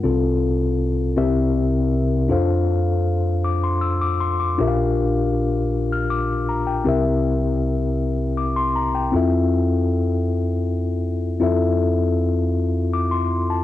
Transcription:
\new Staff \with { instrumentName = "Tine electric piano" } { \time 6/8 \key f \major \tempo 4. = 53 << { r2. | r4. d'''16 c'''16 e'''16 d'''16 c'''16 d'''16~ | d'''16 r4. f'''16 d'''8 bes''16 g''16~ | g''16 r4. r16 d'''16 c'''16 bes''16 g''16~ |
g''16 r2 r8. | r2 d'''16 c'''8 a''16 | } \\ { <c, c c' f' a'>4. <c, c c' e' g' bes' e''>4. | <f, d' f' a' c'' f''>2. | <bes,, bes, d' f' g' bes' e'' f''>2. | <c, c c' e' g' bes' e''>2. |
<f, c' e' f' a' e''>2. | <f, c' e' f' a' e''>2. | } >> }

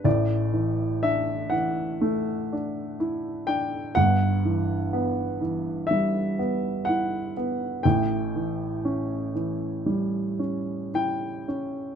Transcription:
<<
  \new Staff \with { instrumentName = "Grand piano" } { \time 4/4 \key a \mixolydian \tempo 4 = 61 d''4 e''8 fis''4. r8 g''8 | fis''2 e''4 fis''4 | g''2. g''4 | }
  \new Staff \with { instrumentName = "Grand piano" } { \clef bass \time 4/4 \key a \mixolydian <a,, a,>8 e8 d'8 e8 a8 d'8 e'8 d'8 | <g,, g,>8 e8 b8 e8 g8 b8 e'8 b8 | <a,, a,>8 e8 cis'8 e8 g8 cis'8 e'8 cis'8 | }
>>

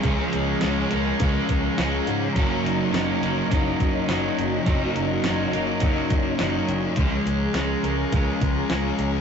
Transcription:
<<
  \new Staff \with { instrumentName = "String machine" } { \time 4/4 \key ges \major \tempo 4 = 104 << { <des'' bes''>1~ | <des'' bes''>1~ | <des'' bes''>1 | <des'' bes''>1 | } \\ { <aes' f''>1 | <ges' ees''>1~ | <ges' ees''>1 | <aes' f''>1 | } >> }
  \new Staff \with { instrumentName = "Clean electric guitar" } { \time 4/4 \key ges \major <aes des' f'>8 des'8 des'8 bes'8 f'8 aes8 f'8 des'8 | des'8 ees'8 des'8 bes'8 ees'8 des'8 ees'8 des'8 | des'8 ees'8 des'8 bes'8 ees'8 des'8 ees'8 des'8 | aes8 des'8 des'8 bes'8 f'8 aes8 f'8 des'8 | }
  \new Staff \with { instrumentName = "Overdriven electric guitar" } { \clef bass \time 4/4 \key ges \major <des f aes des'>4 <des f aes des'>8 <f aes des'>8 <des f aes des'>4 <des f aes des'>4 | <ges, des ges bes des'>4 <des ges bes des'>8 <ges bes des'>8 <ges, des ges bes des'>4 <des ges bes des'>4 | <ges, des ges bes des'>4 <des ges bes des'>8 <ges bes des'>8 <ges, des ges bes des'>4 <des ges bes des'>4 | <des f aes des'>4 <des f aes des'>8 <f aes des'>8 <des f aes des'>4 <des f aes des'>4 | }
  \new Staff \with { instrumentName = "Distorted electric guitar" } { \clef bass \time 4/4 \key ges \major <des aes des'>4 <des aes des'>8 <aes des'>8 <des aes des'>4 <des aes des'>4 | <ges, des ges>4 <ges, des ges>8 <des ges>8 <ges, des ges>4 <ges, des ges>4 | <ges, des ges>4 <ges, des ges>8 <des ges>8 <ges, des ges>4 <ges, des ges>4 | <des aes des'>4 <des aes des'>8 <aes des'>8 <des aes des'>4 <des aes des'>4 | }
  \new Staff \with { instrumentName = "Fingered electric bass" } { \clef bass \time 4/4 \key ges \major des,8 des,8 des,8 des,8 des,8 des,8 des,8 aes,8 | ges,,8 ges,,8 ges,,8 ges,,8 ges,,8 ges,,8 ges,,8 ges,,8 | ges,,8 ges,,8 ges,,8 ges,,8 ges,,8 ges,,8 ges,,8 ges,,8 | des,8 des,8 des,8 des,8 des,8 des,8 des,8 des,8 | }
  \new DrumStaff \with { instrumentName = "Drums" } \drummode { \time 4/4 <hh bd>8 hh8 <hh sn>8 hh8 <hh bd>8 <hh bd>8 <hh sn>8 hh8 | <hh bd>8 hh8 <hh sn>8 hh8 <hh bd>8 <hh bd>8 <hh sn>8 hh8 | <hh bd>8 hh8 <hh sn>8 hh8 <hh bd>8 <hh bd>8 <hh sn>8 hh8 | <hh bd>8 hh8 <hh sn>8 hh8 <hh bd>8 <hh bd>8 <hh sn>8 hh8 | }
>>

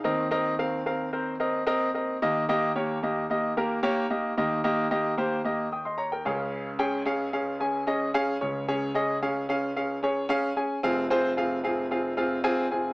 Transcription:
<<
  \new Staff \with { instrumentName = "Grand piano" } { \time 4/4 \key ees \mixolydian \tempo 4 = 112 << { r1 | r1 | r2 r8 <g'' ees'''>16 <ees'' c'''>16 <des'' bes''>16 <bes' g''>8 r16 | r1 |
r1 | r1 | } \\ { <c' bes' ees''>8 <c' bes' ees''>8 <c' bes' f''>8 <c' bes' f''>8 <c' bes' c''>8 <c' bes' ees''>8 <c' bes' ees''>8 <c' bes' ees''>8 | <bes g' ees''>8 <bes g' ees''>8 <bes g' des''>8 <bes g' ees''>8 <bes g' ees''>8 <bes g' bes'>8 <bes g' des''>8 <bes g' ees''>8 | <bes g' ees''>8 <bes g' ees''>8 <bes g' ees''>8 <bes g' c''>8 <bes g' ees''>8 r4 <des' aes' f''>8~ | <des' aes' f''>8 <des' aes' g''>8 <des' aes' f''>8 <des' aes' f''>8 <des' aes' aes''>8 <des' aes' ees''>8 <des' aes' f''>8 <des' aes' des''>8 |
<des' aes' des''>8 <des' aes' ees''>8 <des' aes' f''>8 <des' aes' f''>8 <des' aes' f''>8 <des' aes' des''>8 <des' aes' f''>8 <des' aes' aes''>8 | <c' f' aes' f''>8 <c' f' aes' c''>8 <c' f' aes' f''>8 <c' f' aes' f''>8 <c' f' aes' f''>8 <c' f' aes' f''>8 <c' f' aes' aes''>8 <c' f' aes' aes''>8 | } >> }
  \new Staff \with { instrumentName = "Grand piano" } { \clef bass \time 4/4 \key ees \mixolydian <ees, ees>1 | <ees, ees>1 | <ees, ees>2.~ <ees, ees>8 <des, des>8~ | <des, des>2.~ <des, des>8 <des, des>8~ |
<des, des>2.~ <des, des>8 r8 | <f,, f,>1 | }
>>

